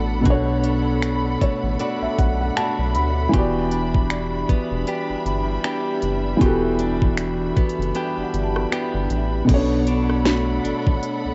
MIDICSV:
0, 0, Header, 1, 7, 480
1, 0, Start_track
1, 0, Key_signature, 2, "minor"
1, 0, Tempo, 769231
1, 160, Time_signature, 4, 2, 24, 8
1, 7079, End_track
2, 0, Start_track
2, 0, Title_t, "Celesta"
2, 0, Program_c, 0, 8
2, 2560, Note_on_c, 0, 74, 78
2, 3518, Note_off_c, 0, 74, 0
2, 4965, Note_on_c, 0, 74, 65
2, 5137, Note_on_c, 0, 78, 55
2, 5263, Note_on_c, 0, 81, 52
2, 5920, Note_off_c, 0, 74, 0
2, 6070, Note_off_c, 0, 78, 0
2, 6189, Note_off_c, 0, 81, 0
2, 6402, Note_on_c, 0, 66, 72
2, 7079, Note_off_c, 0, 66, 0
2, 7079, End_track
3, 0, Start_track
3, 0, Title_t, "String section"
3, 0, Program_c, 1, 48
3, 0, Note_on_c, 1, 62, 70
3, 0, Note_on_c, 1, 69, 73
3, 0, Note_on_c, 1, 78, 67
3, 0, Note_on_c, 1, 83, 84
3, 2055, Note_off_c, 1, 78, 0
3, 2056, Note_off_c, 1, 69, 0
3, 2082, Note_on_c, 1, 76, 69
3, 2083, Note_on_c, 1, 55, 77
3, 5896, Note_off_c, 1, 55, 0
3, 5896, Note_off_c, 1, 62, 0
3, 5896, Note_off_c, 1, 76, 0
3, 5896, Note_off_c, 1, 83, 0
3, 5918, Note_on_c, 1, 62, 72
3, 5919, Note_on_c, 1, 69, 80
3, 5920, Note_on_c, 1, 78, 70
3, 5921, Note_on_c, 1, 83, 85
3, 7079, Note_off_c, 1, 62, 0
3, 7079, Note_off_c, 1, 69, 0
3, 7079, Note_off_c, 1, 78, 0
3, 7079, Note_off_c, 1, 83, 0
3, 7079, End_track
4, 0, Start_track
4, 0, Title_t, "Felt piano"
4, 0, Program_c, 2, 0
4, 0, Control_c, 2, 64, 127
4, 0, Note_on_c, 2, 47, 74
4, 0, Note_on_c, 2, 59, 69
4, 0, Note_on_c, 2, 62, 67
4, 0, Note_on_c, 2, 69, 71
4, 0, Note_on_c, 2, 73, 80
4, 121, Note_off_c, 2, 47, 0
4, 128, Note_off_c, 2, 59, 0
4, 133, Note_on_c, 2, 47, 75
4, 135, Note_off_c, 2, 62, 0
4, 142, Note_off_c, 2, 69, 0
4, 147, Note_on_c, 2, 59, 70
4, 148, Note_off_c, 2, 73, 0
4, 160, Note_on_c, 2, 62, 70
4, 174, Note_on_c, 2, 69, 67
4, 189, Note_on_c, 2, 73, 88
4, 874, Note_off_c, 2, 73, 0
4, 884, Note_on_c, 2, 73, 68
4, 1105, Note_off_c, 2, 73, 0
4, 1123, Note_on_c, 2, 74, 71
4, 1251, Note_off_c, 2, 74, 0
4, 1265, Note_on_c, 2, 76, 68
4, 1356, Note_off_c, 2, 76, 0
4, 1364, Note_on_c, 2, 78, 69
4, 1491, Note_off_c, 2, 78, 0
4, 1505, Note_on_c, 2, 78, 67
4, 1596, Note_off_c, 2, 78, 0
4, 1602, Note_on_c, 2, 81, 72
4, 1824, Note_off_c, 2, 81, 0
4, 1842, Note_on_c, 2, 83, 67
4, 2041, Note_off_c, 2, 47, 0
4, 2048, Note_off_c, 2, 59, 0
4, 2053, Note_on_c, 2, 52, 80
4, 2055, Note_off_c, 2, 62, 0
4, 2062, Note_off_c, 2, 69, 0
4, 2064, Note_off_c, 2, 83, 0
4, 2066, Note_on_c, 2, 59, 68
4, 2081, Note_on_c, 2, 66, 74
4, 2089, Control_c, 2, 64, 0
4, 2096, Note_on_c, 2, 67, 69
4, 2109, Note_on_c, 2, 74, 84
4, 2214, Control_c, 2, 64, 127
4, 3961, Note_off_c, 2, 52, 0
4, 3968, Note_off_c, 2, 59, 0
4, 3975, Note_off_c, 2, 66, 0
4, 3975, Note_on_c, 2, 52, 78
4, 3983, Note_off_c, 2, 67, 0
4, 3988, Note_on_c, 2, 59, 73
4, 3990, Note_off_c, 2, 74, 0
4, 4003, Note_on_c, 2, 66, 73
4, 4017, Note_on_c, 2, 67, 70
4, 4031, Note_on_c, 2, 69, 88
4, 5882, Note_off_c, 2, 52, 0
4, 5889, Note_off_c, 2, 59, 0
4, 5896, Note_off_c, 2, 66, 0
4, 5896, Note_on_c, 2, 47, 79
4, 5903, Note_off_c, 2, 67, 0
4, 5910, Note_off_c, 2, 69, 0
4, 5912, Note_on_c, 2, 59, 69
4, 5926, Note_on_c, 2, 61, 58
4, 5927, Control_c, 2, 64, 0
4, 5940, Note_on_c, 2, 69, 72
4, 5953, Note_on_c, 2, 73, 89
4, 5965, Note_on_c, 2, 62, 74
4, 5970, Note_off_c, 2, 61, 0
4, 6049, Control_c, 2, 64, 127
4, 7079, Note_off_c, 2, 47, 0
4, 7079, Note_off_c, 2, 59, 0
4, 7079, Note_off_c, 2, 62, 0
4, 7079, Note_off_c, 2, 69, 0
4, 7079, Note_off_c, 2, 73, 0
4, 7079, End_track
5, 0, Start_track
5, 0, Title_t, "Clean electric guitar"
5, 0, Program_c, 3, 27
5, 0, Note_on_c, 3, 47, 83
5, 0, Note_on_c, 3, 57, 57
5, 0, Note_on_c, 3, 62, 59
5, 0, Note_on_c, 3, 66, 62
5, 151, Note_off_c, 3, 47, 0
5, 155, Note_off_c, 3, 66, 0
5, 159, Note_on_c, 3, 47, 86
5, 162, Note_on_c, 3, 66, 74
5, 397, Note_off_c, 3, 62, 0
5, 399, Note_on_c, 3, 62, 57
5, 873, Note_off_c, 3, 57, 0
5, 880, Note_on_c, 3, 57, 63
5, 1113, Note_off_c, 3, 57, 0
5, 1121, Note_off_c, 3, 66, 0
5, 1121, Note_on_c, 3, 57, 63
5, 1122, Note_off_c, 3, 62, 0
5, 1124, Note_on_c, 3, 62, 62
5, 1129, Note_on_c, 3, 66, 67
5, 1593, Note_off_c, 3, 57, 0
5, 1600, Note_off_c, 3, 66, 0
5, 1601, Note_off_c, 3, 62, 0
5, 1601, Note_on_c, 3, 57, 57
5, 1604, Note_on_c, 3, 62, 57
5, 1608, Note_on_c, 3, 66, 62
5, 2079, Note_off_c, 3, 47, 0
5, 2081, Note_on_c, 3, 52, 83
5, 2082, Note_off_c, 3, 66, 0
5, 2085, Note_on_c, 3, 67, 71
5, 2136, Note_off_c, 3, 57, 0
5, 2318, Note_off_c, 3, 62, 0
5, 2321, Note_on_c, 3, 62, 62
5, 2803, Note_on_c, 3, 59, 65
5, 3039, Note_off_c, 3, 59, 0
5, 3041, Note_on_c, 3, 59, 62
5, 3042, Note_off_c, 3, 62, 0
5, 3042, Note_off_c, 3, 67, 0
5, 3045, Note_on_c, 3, 62, 59
5, 3049, Note_on_c, 3, 67, 71
5, 3519, Note_off_c, 3, 59, 0
5, 3521, Note_off_c, 3, 67, 0
5, 3521, Note_on_c, 3, 59, 61
5, 3522, Note_off_c, 3, 62, 0
5, 3524, Note_on_c, 3, 62, 59
5, 3528, Note_on_c, 3, 67, 64
5, 3995, Note_off_c, 3, 52, 0
5, 3998, Note_off_c, 3, 67, 0
5, 4002, Note_on_c, 3, 52, 88
5, 4006, Note_on_c, 3, 67, 74
5, 4240, Note_off_c, 3, 62, 0
5, 4243, Note_on_c, 3, 62, 63
5, 4718, Note_off_c, 3, 59, 0
5, 4720, Note_on_c, 3, 59, 64
5, 4959, Note_off_c, 3, 59, 0
5, 4962, Note_on_c, 3, 59, 61
5, 4963, Note_off_c, 3, 62, 0
5, 4963, Note_off_c, 3, 67, 0
5, 4965, Note_on_c, 3, 62, 64
5, 4970, Note_on_c, 3, 67, 68
5, 5439, Note_off_c, 3, 59, 0
5, 5441, Note_off_c, 3, 67, 0
5, 5441, Note_on_c, 3, 59, 62
5, 5442, Note_off_c, 3, 62, 0
5, 5445, Note_on_c, 3, 62, 62
5, 5449, Note_on_c, 3, 67, 68
5, 5921, Note_off_c, 3, 52, 0
5, 5922, Note_on_c, 3, 47, 88
5, 5980, Note_off_c, 3, 67, 0
5, 6161, Note_off_c, 3, 62, 0
5, 6163, Note_on_c, 3, 62, 60
5, 6399, Note_off_c, 3, 59, 0
5, 6401, Note_on_c, 3, 57, 60
5, 6638, Note_off_c, 3, 62, 0
5, 6641, Note_on_c, 3, 62, 60
5, 7079, Note_off_c, 3, 47, 0
5, 7079, Note_off_c, 3, 57, 0
5, 7079, Note_off_c, 3, 62, 0
5, 7079, End_track
6, 0, Start_track
6, 0, Title_t, "Analog synth bass"
6, 0, Program_c, 4, 38
6, 0, Note_on_c, 4, 33, 94
6, 160, Note_on_c, 4, 35, 99
6, 170, Note_off_c, 4, 33, 0
6, 855, Note_off_c, 4, 35, 0
6, 1021, Note_on_c, 4, 33, 91
6, 1105, Note_off_c, 4, 33, 0
6, 1260, Note_on_c, 4, 35, 48
6, 1300, Note_off_c, 4, 35, 0
6, 1364, Note_on_c, 4, 35, 88
6, 1565, Note_off_c, 4, 35, 0
6, 1740, Note_on_c, 4, 35, 87
6, 1842, Note_on_c, 4, 38, 95
6, 1851, Note_off_c, 4, 35, 0
6, 2044, Note_off_c, 4, 38, 0
6, 2081, Note_on_c, 4, 28, 111
6, 2776, Note_off_c, 4, 28, 0
6, 2803, Note_on_c, 4, 28, 48
6, 2858, Note_off_c, 4, 28, 0
6, 2941, Note_on_c, 4, 28, 86
6, 3025, Note_off_c, 4, 28, 0
6, 3181, Note_on_c, 4, 31, 50
6, 3221, Note_off_c, 4, 31, 0
6, 3281, Note_on_c, 4, 31, 91
6, 3483, Note_off_c, 4, 31, 0
6, 3762, Note_on_c, 4, 30, 95
6, 3964, Note_off_c, 4, 30, 0
6, 4001, Note_on_c, 4, 28, 107
6, 4695, Note_off_c, 4, 28, 0
6, 4861, Note_on_c, 4, 30, 89
6, 4945, Note_off_c, 4, 30, 0
6, 5102, Note_on_c, 4, 31, 50
6, 5142, Note_off_c, 4, 31, 0
6, 5204, Note_on_c, 4, 31, 89
6, 5405, Note_off_c, 4, 31, 0
6, 5581, Note_on_c, 4, 31, 101
6, 5665, Note_off_c, 4, 31, 0
6, 5681, Note_on_c, 4, 33, 100
6, 5883, Note_off_c, 4, 33, 0
6, 5921, Note_on_c, 4, 35, 104
6, 6616, Note_off_c, 4, 35, 0
6, 6643, Note_on_c, 4, 33, 47
6, 6698, Note_off_c, 4, 33, 0
6, 6781, Note_on_c, 4, 33, 92
6, 6865, Note_off_c, 4, 33, 0
6, 7022, Note_on_c, 4, 37, 46
6, 7062, Note_off_c, 4, 37, 0
6, 7079, End_track
7, 0, Start_track
7, 0, Title_t, "Drums"
7, 159, Note_on_c, 9, 42, 80
7, 160, Note_on_c, 9, 36, 113
7, 221, Note_off_c, 9, 42, 0
7, 222, Note_off_c, 9, 36, 0
7, 397, Note_on_c, 9, 42, 70
7, 459, Note_off_c, 9, 42, 0
7, 639, Note_on_c, 9, 26, 112
7, 642, Note_on_c, 9, 42, 64
7, 701, Note_off_c, 9, 26, 0
7, 704, Note_off_c, 9, 42, 0
7, 882, Note_on_c, 9, 36, 97
7, 884, Note_on_c, 9, 42, 56
7, 945, Note_off_c, 9, 36, 0
7, 946, Note_off_c, 9, 42, 0
7, 1120, Note_on_c, 9, 42, 73
7, 1182, Note_off_c, 9, 42, 0
7, 1364, Note_on_c, 9, 36, 83
7, 1364, Note_on_c, 9, 42, 64
7, 1426, Note_off_c, 9, 36, 0
7, 1426, Note_off_c, 9, 42, 0
7, 1603, Note_on_c, 9, 26, 97
7, 1603, Note_on_c, 9, 42, 57
7, 1665, Note_off_c, 9, 26, 0
7, 1665, Note_off_c, 9, 42, 0
7, 1838, Note_on_c, 9, 42, 74
7, 1901, Note_off_c, 9, 42, 0
7, 2081, Note_on_c, 9, 36, 116
7, 2081, Note_on_c, 9, 42, 80
7, 2143, Note_off_c, 9, 36, 0
7, 2143, Note_off_c, 9, 42, 0
7, 2317, Note_on_c, 9, 42, 72
7, 2379, Note_off_c, 9, 42, 0
7, 2461, Note_on_c, 9, 36, 91
7, 2523, Note_off_c, 9, 36, 0
7, 2559, Note_on_c, 9, 26, 110
7, 2562, Note_on_c, 9, 42, 66
7, 2622, Note_off_c, 9, 26, 0
7, 2625, Note_off_c, 9, 42, 0
7, 2802, Note_on_c, 9, 36, 94
7, 2805, Note_on_c, 9, 42, 60
7, 2865, Note_off_c, 9, 36, 0
7, 2867, Note_off_c, 9, 42, 0
7, 3039, Note_on_c, 9, 42, 68
7, 3101, Note_off_c, 9, 42, 0
7, 3283, Note_on_c, 9, 42, 63
7, 3345, Note_off_c, 9, 42, 0
7, 3521, Note_on_c, 9, 26, 102
7, 3521, Note_on_c, 9, 42, 61
7, 3583, Note_off_c, 9, 42, 0
7, 3584, Note_off_c, 9, 26, 0
7, 3757, Note_on_c, 9, 42, 70
7, 3820, Note_off_c, 9, 42, 0
7, 4000, Note_on_c, 9, 36, 116
7, 4000, Note_on_c, 9, 42, 83
7, 4063, Note_off_c, 9, 36, 0
7, 4063, Note_off_c, 9, 42, 0
7, 4237, Note_on_c, 9, 42, 72
7, 4299, Note_off_c, 9, 42, 0
7, 4380, Note_on_c, 9, 36, 92
7, 4443, Note_off_c, 9, 36, 0
7, 4477, Note_on_c, 9, 26, 107
7, 4480, Note_on_c, 9, 42, 68
7, 4540, Note_off_c, 9, 26, 0
7, 4543, Note_off_c, 9, 42, 0
7, 4721, Note_on_c, 9, 42, 49
7, 4722, Note_on_c, 9, 36, 105
7, 4783, Note_off_c, 9, 42, 0
7, 4785, Note_off_c, 9, 36, 0
7, 4801, Note_on_c, 9, 42, 51
7, 4863, Note_off_c, 9, 42, 0
7, 4881, Note_on_c, 9, 42, 49
7, 4943, Note_off_c, 9, 42, 0
7, 4959, Note_on_c, 9, 42, 71
7, 5021, Note_off_c, 9, 42, 0
7, 5203, Note_on_c, 9, 42, 66
7, 5266, Note_off_c, 9, 42, 0
7, 5342, Note_on_c, 9, 37, 86
7, 5404, Note_off_c, 9, 37, 0
7, 5444, Note_on_c, 9, 26, 101
7, 5444, Note_on_c, 9, 42, 57
7, 5506, Note_off_c, 9, 26, 0
7, 5506, Note_off_c, 9, 42, 0
7, 5679, Note_on_c, 9, 42, 73
7, 5742, Note_off_c, 9, 42, 0
7, 5922, Note_on_c, 9, 36, 123
7, 5922, Note_on_c, 9, 42, 83
7, 5922, Note_on_c, 9, 49, 95
7, 5984, Note_off_c, 9, 36, 0
7, 5984, Note_off_c, 9, 42, 0
7, 5984, Note_off_c, 9, 49, 0
7, 6158, Note_on_c, 9, 42, 76
7, 6221, Note_off_c, 9, 42, 0
7, 6300, Note_on_c, 9, 37, 66
7, 6363, Note_off_c, 9, 37, 0
7, 6399, Note_on_c, 9, 38, 117
7, 6402, Note_on_c, 9, 42, 72
7, 6462, Note_off_c, 9, 38, 0
7, 6465, Note_off_c, 9, 42, 0
7, 6645, Note_on_c, 9, 42, 65
7, 6707, Note_off_c, 9, 42, 0
7, 6781, Note_on_c, 9, 36, 92
7, 6843, Note_off_c, 9, 36, 0
7, 6881, Note_on_c, 9, 42, 73
7, 6944, Note_off_c, 9, 42, 0
7, 7079, End_track
0, 0, End_of_file